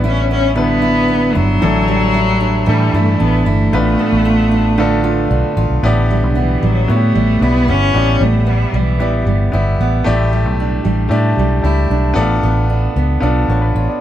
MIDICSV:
0, 0, Header, 1, 5, 480
1, 0, Start_track
1, 0, Tempo, 527704
1, 1474, Time_signature, 4, 2, 24, 8
1, 12741, End_track
2, 0, Start_track
2, 0, Title_t, "Grand piano"
2, 0, Program_c, 0, 0
2, 0, Control_c, 0, 64, 127
2, 0, Note_on_c, 0, 55, 84
2, 0, Note_on_c, 0, 59, 82
2, 0, Note_on_c, 0, 62, 81
2, 0, Note_on_c, 0, 64, 80
2, 0, Note_on_c, 0, 66, 76
2, 0, Note_on_c, 0, 71, 94
2, 449, Note_off_c, 0, 55, 0
2, 450, Note_off_c, 0, 59, 0
2, 455, Note_off_c, 0, 62, 0
2, 456, Note_off_c, 0, 64, 0
2, 459, Note_off_c, 0, 71, 0
2, 503, Note_on_c, 0, 55, 77
2, 507, Note_on_c, 0, 59, 70
2, 513, Note_on_c, 0, 62, 68
2, 517, Note_on_c, 0, 64, 74
2, 522, Note_on_c, 0, 71, 93
2, 1403, Note_off_c, 0, 55, 0
2, 1405, Note_off_c, 0, 59, 0
2, 1408, Note_off_c, 0, 62, 0
2, 1410, Note_off_c, 0, 64, 0
2, 1412, Note_off_c, 0, 71, 0
2, 1467, Note_on_c, 0, 52, 83
2, 1471, Note_on_c, 0, 57, 84
2, 1472, Note_on_c, 0, 62, 82
2, 1480, Note_on_c, 0, 64, 76
2, 1484, Note_on_c, 0, 69, 98
2, 1486, Control_c, 0, 64, 0
2, 1489, Note_off_c, 0, 66, 0
2, 1641, Control_c, 0, 64, 127
2, 2364, Note_off_c, 0, 52, 0
2, 2366, Note_off_c, 0, 57, 0
2, 2367, Note_off_c, 0, 62, 0
2, 2370, Note_off_c, 0, 64, 0
2, 2373, Note_off_c, 0, 69, 0
2, 2428, Note_on_c, 0, 55, 85
2, 2434, Note_on_c, 0, 57, 75
2, 2437, Note_on_c, 0, 62, 74
2, 2444, Note_on_c, 0, 64, 73
2, 2447, Note_on_c, 0, 69, 93
2, 3324, Note_off_c, 0, 55, 0
2, 3327, Note_off_c, 0, 57, 0
2, 3328, Note_off_c, 0, 62, 0
2, 3332, Note_off_c, 0, 64, 0
2, 3334, Note_off_c, 0, 69, 0
2, 3391, Note_on_c, 0, 57, 86
2, 3394, Note_on_c, 0, 59, 78
2, 3402, Note_on_c, 0, 62, 85
2, 3402, Note_on_c, 0, 65, 85
2, 3405, Control_c, 0, 64, 0
2, 3406, Note_on_c, 0, 71, 98
2, 3576, Control_c, 0, 64, 127
2, 4285, Note_off_c, 0, 57, 0
2, 4287, Note_off_c, 0, 59, 0
2, 4290, Note_off_c, 0, 62, 0
2, 4290, Note_off_c, 0, 65, 0
2, 4292, Note_off_c, 0, 71, 0
2, 4346, Note_on_c, 0, 57, 89
2, 4350, Note_on_c, 0, 59, 83
2, 4353, Note_on_c, 0, 62, 83
2, 4358, Note_on_c, 0, 65, 84
2, 4363, Note_on_c, 0, 69, 103
2, 5242, Note_off_c, 0, 57, 0
2, 5244, Note_off_c, 0, 59, 0
2, 5246, Note_off_c, 0, 62, 0
2, 5248, Note_off_c, 0, 65, 0
2, 5251, Note_off_c, 0, 69, 0
2, 5307, Note_on_c, 0, 59, 99
2, 5310, Note_on_c, 0, 64, 81
2, 5319, Control_c, 0, 64, 0
2, 5321, Note_on_c, 0, 67, 86
2, 5324, Note_on_c, 0, 74, 108
2, 5476, Control_c, 0, 64, 127
2, 6203, Note_off_c, 0, 59, 0
2, 6204, Note_off_c, 0, 64, 0
2, 6210, Note_off_c, 0, 67, 0
2, 6211, Note_off_c, 0, 74, 0
2, 6260, Note_on_c, 0, 59, 76
2, 6272, Note_on_c, 0, 64, 67
2, 6278, Note_on_c, 0, 66, 53
2, 6282, Note_on_c, 0, 73, 81
2, 6331, Note_off_c, 0, 66, 0
2, 6336, Note_on_c, 0, 67, 65
2, 6712, Note_off_c, 0, 59, 0
2, 6718, Note_off_c, 0, 64, 0
2, 6723, Note_off_c, 0, 73, 0
2, 6738, Note_off_c, 0, 67, 0
2, 6740, Note_on_c, 0, 59, 58
2, 6744, Note_on_c, 0, 64, 55
2, 6752, Note_on_c, 0, 67, 54
2, 6754, Note_on_c, 0, 74, 65
2, 7192, Note_off_c, 0, 59, 0
2, 7194, Note_off_c, 0, 64, 0
2, 7198, Note_off_c, 0, 67, 0
2, 7199, Note_off_c, 0, 74, 0
2, 7221, Note_on_c, 0, 59, 77
2, 7226, Note_on_c, 0, 64, 71
2, 7235, Note_on_c, 0, 67, 78
2, 7239, Note_on_c, 0, 74, 93
2, 8120, Note_off_c, 0, 59, 0
2, 8123, Note_off_c, 0, 64, 0
2, 8127, Note_off_c, 0, 67, 0
2, 8129, Note_off_c, 0, 74, 0
2, 8183, Note_on_c, 0, 59, 71
2, 8185, Note_on_c, 0, 64, 71
2, 8193, Note_on_c, 0, 67, 63
2, 8201, Note_on_c, 0, 74, 86
2, 8634, Note_off_c, 0, 59, 0
2, 8635, Note_off_c, 0, 64, 0
2, 8639, Note_off_c, 0, 67, 0
2, 8643, Note_off_c, 0, 74, 0
2, 8658, Note_on_c, 0, 59, 78
2, 8667, Note_on_c, 0, 64, 75
2, 8673, Note_on_c, 0, 67, 64
2, 8680, Note_on_c, 0, 74, 78
2, 9112, Note_off_c, 0, 59, 0
2, 9116, Note_off_c, 0, 64, 0
2, 9119, Note_off_c, 0, 67, 0
2, 9123, Note_off_c, 0, 74, 0
2, 9136, Note_on_c, 0, 57, 106
2, 9143, Note_on_c, 0, 64, 92
2, 9150, Note_on_c, 0, 67, 92
2, 9153, Note_on_c, 0, 74, 112
2, 9162, Control_c, 0, 64, 0
2, 9343, Control_c, 0, 64, 127
2, 10038, Note_off_c, 0, 57, 0
2, 10042, Note_off_c, 0, 64, 0
2, 10045, Note_off_c, 0, 67, 0
2, 10047, Note_off_c, 0, 74, 0
2, 10085, Note_on_c, 0, 57, 89
2, 10091, Note_on_c, 0, 64, 89
2, 10099, Note_on_c, 0, 67, 83
2, 10103, Note_on_c, 0, 74, 100
2, 10546, Note_off_c, 0, 57, 0
2, 10549, Note_off_c, 0, 64, 0
2, 10553, Note_off_c, 0, 67, 0
2, 10555, Note_off_c, 0, 74, 0
2, 10567, Note_on_c, 0, 57, 74
2, 10571, Note_on_c, 0, 64, 68
2, 10579, Note_on_c, 0, 67, 65
2, 10586, Note_on_c, 0, 74, 85
2, 11027, Note_off_c, 0, 57, 0
2, 11029, Note_off_c, 0, 64, 0
2, 11033, Note_off_c, 0, 67, 0
2, 11036, Note_off_c, 0, 74, 0
2, 11039, Note_on_c, 0, 59, 99
2, 11048, Note_on_c, 0, 64, 72
2, 11055, Note_on_c, 0, 69, 92
2, 11058, Note_on_c, 0, 74, 112
2, 11085, Control_c, 0, 64, 0
2, 11104, Note_on_c, 0, 65, 94
2, 11117, Note_off_c, 0, 64, 0
2, 11229, Control_c, 0, 64, 127
2, 11951, Note_off_c, 0, 59, 0
2, 11959, Note_off_c, 0, 69, 0
2, 11961, Note_off_c, 0, 74, 0
2, 11984, Note_off_c, 0, 65, 0
2, 12010, Note_on_c, 0, 59, 89
2, 12018, Note_on_c, 0, 65, 83
2, 12023, Note_on_c, 0, 69, 77
2, 12029, Note_on_c, 0, 74, 91
2, 12261, Note_off_c, 0, 65, 0
2, 12269, Note_off_c, 0, 69, 0
2, 12271, Note_on_c, 0, 73, 61
2, 12272, Note_off_c, 0, 74, 0
2, 12274, Note_on_c, 0, 65, 53
2, 12383, Note_on_c, 0, 71, 69
2, 12386, Note_off_c, 0, 73, 0
2, 12388, Note_off_c, 0, 65, 0
2, 12389, Note_on_c, 0, 62, 57
2, 12470, Note_off_c, 0, 59, 0
2, 12502, Note_off_c, 0, 71, 0
2, 12506, Note_off_c, 0, 62, 0
2, 12510, Note_on_c, 0, 73, 67
2, 12516, Note_on_c, 0, 65, 55
2, 12626, Note_off_c, 0, 73, 0
2, 12627, Note_off_c, 0, 65, 0
2, 12637, Note_on_c, 0, 74, 65
2, 12640, Note_on_c, 0, 65, 53
2, 12741, Note_off_c, 0, 65, 0
2, 12741, Note_off_c, 0, 74, 0
2, 12741, End_track
3, 0, Start_track
3, 0, Title_t, "Steel-string acoustic guitar"
3, 0, Program_c, 1, 25
3, 0, Note_on_c, 1, 45, 80
3, 0, Note_on_c, 1, 50, 69
3, 0, Note_on_c, 1, 55, 69
3, 0, Note_on_c, 1, 59, 62
3, 34, Note_on_c, 1, 64, 74
3, 269, Note_off_c, 1, 59, 0
3, 280, Note_on_c, 1, 59, 64
3, 501, Note_off_c, 1, 50, 0
3, 505, Note_on_c, 1, 50, 71
3, 742, Note_off_c, 1, 64, 0
3, 746, Note_on_c, 1, 64, 69
3, 975, Note_off_c, 1, 59, 0
3, 986, Note_on_c, 1, 59, 61
3, 1050, Note_off_c, 1, 55, 0
3, 1225, Note_off_c, 1, 64, 0
3, 1229, Note_on_c, 1, 64, 71
3, 1463, Note_off_c, 1, 45, 0
3, 1474, Note_on_c, 1, 45, 89
3, 1518, Note_off_c, 1, 59, 0
3, 1710, Note_on_c, 1, 55, 70
3, 1944, Note_off_c, 1, 64, 0
3, 1948, Note_on_c, 1, 64, 73
3, 1975, Note_off_c, 1, 50, 0
3, 2188, Note_on_c, 1, 62, 69
3, 2421, Note_on_c, 1, 52, 76
3, 2667, Note_off_c, 1, 64, 0
3, 2678, Note_on_c, 1, 64, 75
3, 2906, Note_off_c, 1, 62, 0
3, 2910, Note_on_c, 1, 62, 62
3, 3138, Note_off_c, 1, 64, 0
3, 3149, Note_on_c, 1, 64, 73
3, 3384, Note_off_c, 1, 45, 0
3, 3395, Note_on_c, 1, 45, 87
3, 3433, Note_off_c, 1, 52, 0
3, 3438, Note_off_c, 1, 55, 0
3, 3438, Note_off_c, 1, 64, 0
3, 3630, Note_on_c, 1, 59, 62
3, 3868, Note_on_c, 1, 65, 71
3, 4104, Note_off_c, 1, 62, 0
3, 4107, Note_on_c, 1, 62, 68
3, 4345, Note_on_c, 1, 50, 65
3, 4571, Note_off_c, 1, 65, 0
3, 4582, Note_on_c, 1, 65, 69
3, 4824, Note_off_c, 1, 62, 0
3, 4827, Note_on_c, 1, 62, 61
3, 5054, Note_off_c, 1, 65, 0
3, 5065, Note_on_c, 1, 65, 71
3, 5299, Note_off_c, 1, 45, 0
3, 5310, Note_on_c, 1, 45, 83
3, 5356, Note_off_c, 1, 65, 0
3, 5550, Note_off_c, 1, 59, 0
3, 5554, Note_on_c, 1, 55, 60
3, 5776, Note_off_c, 1, 62, 0
3, 5780, Note_on_c, 1, 59, 58
3, 6024, Note_off_c, 1, 55, 0
3, 6028, Note_on_c, 1, 55, 56
3, 6260, Note_off_c, 1, 59, 0
3, 6271, Note_on_c, 1, 59, 63
3, 6504, Note_off_c, 1, 55, 0
3, 6507, Note_on_c, 1, 55, 64
3, 6754, Note_on_c, 1, 64, 68
3, 6781, Note_off_c, 1, 50, 0
3, 6977, Note_off_c, 1, 59, 0
3, 6988, Note_on_c, 1, 59, 64
3, 7209, Note_off_c, 1, 45, 0
3, 7220, Note_on_c, 1, 45, 80
3, 7462, Note_off_c, 1, 55, 0
3, 7466, Note_on_c, 1, 55, 61
3, 7689, Note_off_c, 1, 59, 0
3, 7700, Note_on_c, 1, 59, 58
3, 7947, Note_off_c, 1, 55, 0
3, 7950, Note_on_c, 1, 55, 65
3, 8176, Note_off_c, 1, 59, 0
3, 8187, Note_on_c, 1, 59, 64
3, 8426, Note_off_c, 1, 55, 0
3, 8429, Note_on_c, 1, 55, 59
3, 8669, Note_off_c, 1, 64, 0
3, 8672, Note_on_c, 1, 64, 65
3, 8909, Note_off_c, 1, 59, 0
3, 8920, Note_on_c, 1, 59, 66
3, 9145, Note_off_c, 1, 45, 0
3, 9162, Note_on_c, 1, 45, 80
3, 9203, Note_off_c, 1, 59, 0
3, 9391, Note_off_c, 1, 55, 0
3, 9394, Note_on_c, 1, 55, 64
3, 9642, Note_on_c, 1, 62, 60
3, 9670, Note_off_c, 1, 64, 0
3, 9856, Note_off_c, 1, 55, 0
3, 9867, Note_on_c, 1, 55, 62
3, 10107, Note_off_c, 1, 62, 0
3, 10111, Note_on_c, 1, 62, 62
3, 10349, Note_off_c, 1, 55, 0
3, 10362, Note_on_c, 1, 55, 62
3, 10593, Note_on_c, 1, 64, 66
3, 10831, Note_off_c, 1, 62, 0
3, 10834, Note_on_c, 1, 62, 64
3, 11064, Note_off_c, 1, 45, 0
3, 11075, Note_on_c, 1, 45, 80
3, 11121, Note_off_c, 1, 64, 0
3, 11125, Note_off_c, 1, 55, 0
3, 11310, Note_on_c, 1, 59, 62
3, 11546, Note_off_c, 1, 62, 0
3, 11549, Note_on_c, 1, 62, 59
3, 11787, Note_off_c, 1, 59, 0
3, 11791, Note_on_c, 1, 59, 65
3, 12031, Note_off_c, 1, 62, 0
3, 12035, Note_on_c, 1, 62, 64
3, 12273, Note_off_c, 1, 59, 0
3, 12276, Note_on_c, 1, 59, 55
3, 12513, Note_on_c, 1, 65, 61
3, 12741, Note_off_c, 1, 45, 0
3, 12741, Note_off_c, 1, 59, 0
3, 12741, Note_off_c, 1, 62, 0
3, 12741, Note_off_c, 1, 65, 0
3, 12741, End_track
4, 0, Start_track
4, 0, Title_t, "Cello"
4, 0, Program_c, 2, 42
4, 63, Note_on_c, 2, 61, 95
4, 273, Note_off_c, 2, 61, 0
4, 289, Note_on_c, 2, 61, 100
4, 506, Note_off_c, 2, 61, 0
4, 519, Note_on_c, 2, 59, 111
4, 1238, Note_on_c, 2, 54, 116
4, 1251, Note_off_c, 2, 59, 0
4, 2448, Note_on_c, 2, 55, 96
4, 2462, Note_off_c, 2, 54, 0
4, 2681, Note_on_c, 2, 57, 95
4, 2695, Note_off_c, 2, 55, 0
4, 2924, Note_on_c, 2, 59, 98
4, 2938, Note_off_c, 2, 57, 0
4, 3164, Note_on_c, 2, 57, 107
4, 3177, Note_off_c, 2, 59, 0
4, 5076, Note_off_c, 2, 57, 0
4, 5796, Note_on_c, 2, 52, 77
4, 6047, Note_on_c, 2, 54, 87
4, 6060, Note_off_c, 2, 52, 0
4, 6284, Note_on_c, 2, 57, 98
4, 6297, Note_off_c, 2, 54, 0
4, 6764, Note_on_c, 2, 59, 104
4, 6778, Note_off_c, 2, 57, 0
4, 6998, Note_on_c, 2, 61, 113
4, 7012, Note_off_c, 2, 59, 0
4, 7479, Note_on_c, 2, 57, 94
4, 7493, Note_off_c, 2, 61, 0
4, 7725, Note_on_c, 2, 55, 85
4, 7738, Note_off_c, 2, 57, 0
4, 7976, Note_on_c, 2, 52, 84
4, 7990, Note_off_c, 2, 55, 0
4, 8443, Note_off_c, 2, 52, 0
4, 12741, End_track
5, 0, Start_track
5, 0, Title_t, "Fingered electric bass"
5, 0, Program_c, 3, 33
5, 0, Note_on_c, 3, 33, 103
5, 1238, Note_on_c, 3, 31, 89
5, 1252, Note_off_c, 3, 33, 0
5, 1433, Note_off_c, 3, 31, 0
5, 1478, Note_on_c, 3, 33, 117
5, 2398, Note_off_c, 3, 33, 0
5, 2434, Note_on_c, 3, 45, 109
5, 2630, Note_off_c, 3, 45, 0
5, 2668, Note_on_c, 3, 43, 95
5, 2866, Note_off_c, 3, 43, 0
5, 2916, Note_on_c, 3, 33, 100
5, 3111, Note_off_c, 3, 33, 0
5, 3147, Note_on_c, 3, 31, 96
5, 3346, Note_off_c, 3, 31, 0
5, 3390, Note_on_c, 3, 33, 126
5, 3587, Note_off_c, 3, 33, 0
5, 3752, Note_on_c, 3, 33, 106
5, 4794, Note_off_c, 3, 33, 0
5, 4826, Note_on_c, 3, 35, 103
5, 4926, Note_off_c, 3, 35, 0
5, 5064, Note_on_c, 3, 33, 100
5, 5165, Note_off_c, 3, 33, 0
5, 5184, Note_on_c, 3, 35, 78
5, 5285, Note_off_c, 3, 35, 0
5, 5302, Note_on_c, 3, 33, 102
5, 5670, Note_off_c, 3, 33, 0
5, 5670, Note_on_c, 3, 35, 79
5, 5965, Note_off_c, 3, 35, 0
5, 6031, Note_on_c, 3, 33, 90
5, 6227, Note_off_c, 3, 33, 0
5, 6269, Note_on_c, 3, 45, 93
5, 6466, Note_off_c, 3, 45, 0
5, 6505, Note_on_c, 3, 33, 86
5, 6704, Note_off_c, 3, 33, 0
5, 6741, Note_on_c, 3, 35, 92
5, 6982, Note_on_c, 3, 31, 85
5, 6995, Note_off_c, 3, 35, 0
5, 7182, Note_off_c, 3, 31, 0
5, 7226, Note_on_c, 3, 33, 113
5, 7424, Note_off_c, 3, 33, 0
5, 7464, Note_on_c, 3, 33, 114
5, 7860, Note_off_c, 3, 33, 0
5, 7942, Note_on_c, 3, 35, 80
5, 8184, Note_off_c, 3, 35, 0
5, 8184, Note_on_c, 3, 33, 87
5, 8384, Note_off_c, 3, 33, 0
5, 8423, Note_on_c, 3, 31, 100
5, 8623, Note_off_c, 3, 31, 0
5, 8667, Note_on_c, 3, 31, 104
5, 8865, Note_off_c, 3, 31, 0
5, 8902, Note_on_c, 3, 33, 95
5, 9102, Note_off_c, 3, 33, 0
5, 9151, Note_on_c, 3, 33, 117
5, 9509, Note_off_c, 3, 33, 0
5, 9509, Note_on_c, 3, 35, 88
5, 9805, Note_off_c, 3, 35, 0
5, 9871, Note_on_c, 3, 33, 87
5, 10068, Note_off_c, 3, 33, 0
5, 10098, Note_on_c, 3, 45, 106
5, 10300, Note_off_c, 3, 45, 0
5, 10344, Note_on_c, 3, 35, 85
5, 10544, Note_off_c, 3, 35, 0
5, 10585, Note_on_c, 3, 37, 97
5, 10784, Note_off_c, 3, 37, 0
5, 10825, Note_on_c, 3, 35, 95
5, 11025, Note_off_c, 3, 35, 0
5, 11064, Note_on_c, 3, 33, 123
5, 11264, Note_off_c, 3, 33, 0
5, 11306, Note_on_c, 3, 33, 110
5, 11702, Note_off_c, 3, 33, 0
5, 11786, Note_on_c, 3, 37, 79
5, 11986, Note_off_c, 3, 37, 0
5, 12023, Note_on_c, 3, 35, 86
5, 12224, Note_off_c, 3, 35, 0
5, 12264, Note_on_c, 3, 33, 89
5, 12465, Note_off_c, 3, 33, 0
5, 12508, Note_on_c, 3, 33, 83
5, 12609, Note_off_c, 3, 33, 0
5, 12741, End_track
0, 0, End_of_file